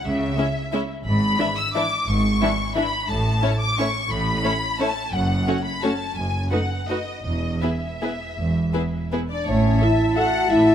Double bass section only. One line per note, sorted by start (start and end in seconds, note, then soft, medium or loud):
0.05 0.33 C#2 medium
1.06 1.34 G#1 medium
2.08 2.36 G#1 medium
3.09 3.37 A1 medium
4.11 4.38 A1 medium
5.14 5.42 F#1 medium
6.16 6.45 F#1 medium
7.25 7.56 E1 soft
8.37 8.68 E1 soft
9.47 9.76 A1 medium
10.51 10.75 A1 soft